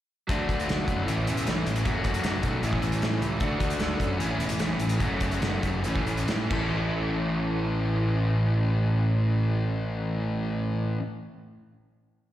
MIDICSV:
0, 0, Header, 1, 5, 480
1, 0, Start_track
1, 0, Key_signature, 3, "major"
1, 0, Tempo, 390879
1, 355, Time_signature, 4, 2, 24, 8
1, 5154, Tempo, 410678
1, 7074, Tempo, 443131
1, 8034, Tempo, 459418
1, 13885, End_track
2, 0, Start_track
2, 0, Title_t, "Overdriven electric guitar"
2, 0, Program_c, 0, 29
2, 335, Note_on_c, 0, 54, 75
2, 1285, Note_off_c, 0, 54, 0
2, 7816, Note_on_c, 0, 69, 89
2, 12517, Note_off_c, 0, 69, 0
2, 13885, End_track
3, 0, Start_track
3, 0, Title_t, "Distorted electric guitar"
3, 0, Program_c, 1, 30
3, 355, Note_on_c, 1, 50, 75
3, 364, Note_on_c, 1, 57, 85
3, 374, Note_on_c, 1, 62, 81
3, 379, Note_on_c, 1, 66, 80
3, 1302, Note_off_c, 1, 50, 0
3, 1305, Note_on_c, 1, 45, 70
3, 1311, Note_off_c, 1, 62, 0
3, 1313, Note_on_c, 1, 52, 83
3, 1314, Note_off_c, 1, 57, 0
3, 1319, Note_on_c, 1, 57, 69
3, 1326, Note_off_c, 1, 66, 0
3, 1331, Note_on_c, 1, 64, 87
3, 1333, Note_on_c, 1, 61, 83
3, 2257, Note_off_c, 1, 45, 0
3, 2258, Note_off_c, 1, 52, 0
3, 2263, Note_on_c, 1, 54, 74
3, 2270, Note_off_c, 1, 64, 0
3, 2271, Note_off_c, 1, 61, 0
3, 2274, Note_off_c, 1, 57, 0
3, 2279, Note_on_c, 1, 57, 68
3, 2292, Note_on_c, 1, 66, 81
3, 2293, Note_on_c, 1, 61, 85
3, 3218, Note_on_c, 1, 45, 79
3, 3224, Note_off_c, 1, 61, 0
3, 3225, Note_off_c, 1, 57, 0
3, 3227, Note_off_c, 1, 54, 0
3, 3230, Note_on_c, 1, 57, 85
3, 3232, Note_on_c, 1, 52, 81
3, 3238, Note_on_c, 1, 61, 87
3, 3241, Note_off_c, 1, 66, 0
3, 3246, Note_on_c, 1, 64, 78
3, 4160, Note_off_c, 1, 52, 0
3, 4165, Note_on_c, 1, 50, 75
3, 4170, Note_off_c, 1, 45, 0
3, 4180, Note_off_c, 1, 61, 0
3, 4183, Note_off_c, 1, 57, 0
3, 4184, Note_off_c, 1, 64, 0
3, 4186, Note_on_c, 1, 62, 80
3, 4188, Note_on_c, 1, 57, 77
3, 4201, Note_on_c, 1, 66, 86
3, 5127, Note_off_c, 1, 50, 0
3, 5129, Note_on_c, 1, 45, 69
3, 5134, Note_off_c, 1, 57, 0
3, 5136, Note_on_c, 1, 52, 80
3, 5138, Note_off_c, 1, 62, 0
3, 5139, Note_on_c, 1, 57, 77
3, 5148, Note_off_c, 1, 66, 0
3, 5148, Note_on_c, 1, 61, 83
3, 5153, Note_on_c, 1, 64, 78
3, 6060, Note_off_c, 1, 52, 0
3, 6064, Note_on_c, 1, 54, 70
3, 6069, Note_off_c, 1, 45, 0
3, 6080, Note_off_c, 1, 64, 0
3, 6081, Note_off_c, 1, 57, 0
3, 6085, Note_on_c, 1, 57, 84
3, 6087, Note_off_c, 1, 61, 0
3, 6092, Note_on_c, 1, 61, 85
3, 6095, Note_on_c, 1, 66, 81
3, 7044, Note_off_c, 1, 54, 0
3, 7055, Note_off_c, 1, 57, 0
3, 7058, Note_off_c, 1, 61, 0
3, 7060, Note_off_c, 1, 66, 0
3, 7078, Note_on_c, 1, 45, 69
3, 7083, Note_on_c, 1, 52, 77
3, 7087, Note_on_c, 1, 57, 84
3, 7090, Note_on_c, 1, 61, 79
3, 7103, Note_on_c, 1, 64, 80
3, 7762, Note_off_c, 1, 45, 0
3, 7775, Note_on_c, 1, 45, 79
3, 7777, Note_off_c, 1, 52, 0
3, 7789, Note_off_c, 1, 57, 0
3, 7790, Note_on_c, 1, 52, 72
3, 7797, Note_off_c, 1, 61, 0
3, 7802, Note_on_c, 1, 57, 82
3, 7803, Note_off_c, 1, 64, 0
3, 7809, Note_on_c, 1, 61, 90
3, 7824, Note_on_c, 1, 64, 92
3, 12478, Note_off_c, 1, 45, 0
3, 12492, Note_off_c, 1, 52, 0
3, 12504, Note_off_c, 1, 57, 0
3, 12511, Note_off_c, 1, 61, 0
3, 12525, Note_off_c, 1, 64, 0
3, 13885, End_track
4, 0, Start_track
4, 0, Title_t, "Fingered electric bass"
4, 0, Program_c, 2, 33
4, 360, Note_on_c, 2, 38, 72
4, 571, Note_off_c, 2, 38, 0
4, 602, Note_on_c, 2, 38, 76
4, 812, Note_off_c, 2, 38, 0
4, 850, Note_on_c, 2, 38, 82
4, 1057, Note_off_c, 2, 38, 0
4, 1082, Note_on_c, 2, 42, 66
4, 1292, Note_off_c, 2, 42, 0
4, 1330, Note_on_c, 2, 33, 83
4, 1537, Note_off_c, 2, 33, 0
4, 1578, Note_on_c, 2, 28, 74
4, 1781, Note_off_c, 2, 28, 0
4, 1815, Note_on_c, 2, 33, 68
4, 2019, Note_off_c, 2, 33, 0
4, 2032, Note_on_c, 2, 33, 77
4, 2282, Note_off_c, 2, 33, 0
4, 2282, Note_on_c, 2, 30, 74
4, 2492, Note_off_c, 2, 30, 0
4, 2521, Note_on_c, 2, 30, 77
4, 2731, Note_off_c, 2, 30, 0
4, 2753, Note_on_c, 2, 30, 81
4, 2967, Note_off_c, 2, 30, 0
4, 2991, Note_on_c, 2, 35, 70
4, 3205, Note_off_c, 2, 35, 0
4, 3222, Note_on_c, 2, 33, 87
4, 3440, Note_off_c, 2, 33, 0
4, 3465, Note_on_c, 2, 33, 74
4, 3681, Note_off_c, 2, 33, 0
4, 3710, Note_on_c, 2, 45, 74
4, 3924, Note_off_c, 2, 45, 0
4, 3946, Note_on_c, 2, 37, 72
4, 4161, Note_off_c, 2, 37, 0
4, 4183, Note_on_c, 2, 38, 85
4, 4399, Note_off_c, 2, 38, 0
4, 4431, Note_on_c, 2, 38, 79
4, 4644, Note_off_c, 2, 38, 0
4, 4656, Note_on_c, 2, 38, 85
4, 4877, Note_off_c, 2, 38, 0
4, 4919, Note_on_c, 2, 42, 80
4, 5131, Note_off_c, 2, 42, 0
4, 5136, Note_on_c, 2, 33, 83
4, 5351, Note_off_c, 2, 33, 0
4, 5375, Note_on_c, 2, 28, 72
4, 5588, Note_off_c, 2, 28, 0
4, 5614, Note_on_c, 2, 33, 69
4, 5826, Note_off_c, 2, 33, 0
4, 5852, Note_on_c, 2, 33, 73
4, 6065, Note_off_c, 2, 33, 0
4, 6097, Note_on_c, 2, 30, 75
4, 6309, Note_off_c, 2, 30, 0
4, 6333, Note_on_c, 2, 30, 84
4, 6550, Note_off_c, 2, 30, 0
4, 6582, Note_on_c, 2, 30, 80
4, 6799, Note_off_c, 2, 30, 0
4, 6830, Note_on_c, 2, 30, 72
4, 7049, Note_off_c, 2, 30, 0
4, 7083, Note_on_c, 2, 33, 74
4, 7287, Note_off_c, 2, 33, 0
4, 7312, Note_on_c, 2, 33, 68
4, 7521, Note_off_c, 2, 33, 0
4, 7544, Note_on_c, 2, 45, 78
4, 7760, Note_off_c, 2, 45, 0
4, 7799, Note_on_c, 2, 33, 77
4, 12459, Note_off_c, 2, 33, 0
4, 13885, End_track
5, 0, Start_track
5, 0, Title_t, "Drums"
5, 359, Note_on_c, 9, 36, 93
5, 359, Note_on_c, 9, 42, 59
5, 481, Note_off_c, 9, 36, 0
5, 481, Note_off_c, 9, 42, 0
5, 601, Note_on_c, 9, 36, 75
5, 604, Note_on_c, 9, 42, 51
5, 724, Note_off_c, 9, 36, 0
5, 727, Note_off_c, 9, 42, 0
5, 732, Note_on_c, 9, 42, 47
5, 849, Note_off_c, 9, 42, 0
5, 849, Note_on_c, 9, 42, 50
5, 863, Note_on_c, 9, 38, 87
5, 972, Note_off_c, 9, 42, 0
5, 986, Note_off_c, 9, 38, 0
5, 1078, Note_on_c, 9, 36, 71
5, 1082, Note_on_c, 9, 42, 57
5, 1201, Note_off_c, 9, 36, 0
5, 1205, Note_off_c, 9, 42, 0
5, 1327, Note_on_c, 9, 42, 54
5, 1450, Note_off_c, 9, 42, 0
5, 1563, Note_on_c, 9, 42, 51
5, 1685, Note_off_c, 9, 42, 0
5, 1685, Note_on_c, 9, 42, 54
5, 1801, Note_off_c, 9, 42, 0
5, 1801, Note_on_c, 9, 42, 59
5, 1815, Note_on_c, 9, 38, 88
5, 1924, Note_off_c, 9, 42, 0
5, 1938, Note_off_c, 9, 38, 0
5, 2044, Note_on_c, 9, 42, 52
5, 2157, Note_off_c, 9, 42, 0
5, 2157, Note_on_c, 9, 42, 58
5, 2276, Note_off_c, 9, 42, 0
5, 2276, Note_on_c, 9, 42, 54
5, 2279, Note_on_c, 9, 36, 94
5, 2399, Note_off_c, 9, 42, 0
5, 2402, Note_off_c, 9, 36, 0
5, 2507, Note_on_c, 9, 42, 53
5, 2515, Note_on_c, 9, 36, 74
5, 2629, Note_off_c, 9, 42, 0
5, 2629, Note_on_c, 9, 42, 52
5, 2638, Note_off_c, 9, 36, 0
5, 2746, Note_off_c, 9, 42, 0
5, 2746, Note_on_c, 9, 42, 56
5, 2759, Note_on_c, 9, 38, 96
5, 2868, Note_off_c, 9, 42, 0
5, 2882, Note_off_c, 9, 38, 0
5, 2984, Note_on_c, 9, 42, 53
5, 2992, Note_on_c, 9, 36, 72
5, 3107, Note_off_c, 9, 42, 0
5, 3114, Note_off_c, 9, 36, 0
5, 3228, Note_on_c, 9, 42, 47
5, 3349, Note_on_c, 9, 36, 69
5, 3351, Note_off_c, 9, 42, 0
5, 3465, Note_on_c, 9, 42, 45
5, 3472, Note_off_c, 9, 36, 0
5, 3588, Note_off_c, 9, 42, 0
5, 3588, Note_on_c, 9, 42, 52
5, 3710, Note_off_c, 9, 42, 0
5, 3710, Note_on_c, 9, 42, 52
5, 3723, Note_on_c, 9, 38, 101
5, 3832, Note_off_c, 9, 42, 0
5, 3846, Note_off_c, 9, 38, 0
5, 3954, Note_on_c, 9, 42, 52
5, 4077, Note_off_c, 9, 42, 0
5, 4178, Note_on_c, 9, 42, 52
5, 4185, Note_on_c, 9, 36, 100
5, 4301, Note_off_c, 9, 42, 0
5, 4308, Note_off_c, 9, 36, 0
5, 4423, Note_on_c, 9, 42, 54
5, 4426, Note_on_c, 9, 36, 75
5, 4546, Note_off_c, 9, 42, 0
5, 4546, Note_on_c, 9, 42, 54
5, 4549, Note_off_c, 9, 36, 0
5, 4661, Note_off_c, 9, 42, 0
5, 4661, Note_on_c, 9, 42, 51
5, 4675, Note_on_c, 9, 38, 87
5, 4784, Note_off_c, 9, 42, 0
5, 4797, Note_off_c, 9, 38, 0
5, 4910, Note_on_c, 9, 36, 71
5, 4916, Note_on_c, 9, 42, 57
5, 5033, Note_off_c, 9, 36, 0
5, 5039, Note_off_c, 9, 42, 0
5, 5160, Note_on_c, 9, 42, 56
5, 5277, Note_off_c, 9, 42, 0
5, 5391, Note_on_c, 9, 42, 52
5, 5496, Note_off_c, 9, 42, 0
5, 5496, Note_on_c, 9, 42, 61
5, 5613, Note_off_c, 9, 42, 0
5, 5616, Note_on_c, 9, 42, 61
5, 5629, Note_on_c, 9, 38, 97
5, 5733, Note_off_c, 9, 42, 0
5, 5746, Note_off_c, 9, 38, 0
5, 5853, Note_on_c, 9, 42, 59
5, 5967, Note_off_c, 9, 42, 0
5, 5967, Note_on_c, 9, 42, 53
5, 6084, Note_off_c, 9, 42, 0
5, 6096, Note_on_c, 9, 42, 57
5, 6097, Note_on_c, 9, 36, 97
5, 6212, Note_off_c, 9, 42, 0
5, 6214, Note_off_c, 9, 36, 0
5, 6332, Note_on_c, 9, 42, 61
5, 6338, Note_on_c, 9, 36, 80
5, 6449, Note_off_c, 9, 42, 0
5, 6455, Note_off_c, 9, 36, 0
5, 6459, Note_on_c, 9, 42, 52
5, 6576, Note_off_c, 9, 42, 0
5, 6581, Note_on_c, 9, 42, 57
5, 6594, Note_on_c, 9, 38, 91
5, 6698, Note_off_c, 9, 42, 0
5, 6711, Note_off_c, 9, 38, 0
5, 6829, Note_on_c, 9, 42, 59
5, 6831, Note_on_c, 9, 36, 72
5, 6946, Note_off_c, 9, 42, 0
5, 6948, Note_off_c, 9, 36, 0
5, 7074, Note_on_c, 9, 42, 48
5, 7182, Note_off_c, 9, 42, 0
5, 7199, Note_on_c, 9, 36, 76
5, 7307, Note_off_c, 9, 36, 0
5, 7320, Note_on_c, 9, 42, 45
5, 7428, Note_off_c, 9, 42, 0
5, 7434, Note_on_c, 9, 42, 49
5, 7542, Note_off_c, 9, 42, 0
5, 7549, Note_on_c, 9, 42, 54
5, 7560, Note_on_c, 9, 38, 94
5, 7657, Note_off_c, 9, 42, 0
5, 7669, Note_off_c, 9, 38, 0
5, 7794, Note_on_c, 9, 49, 82
5, 7797, Note_on_c, 9, 36, 96
5, 7902, Note_off_c, 9, 49, 0
5, 7905, Note_off_c, 9, 36, 0
5, 13885, End_track
0, 0, End_of_file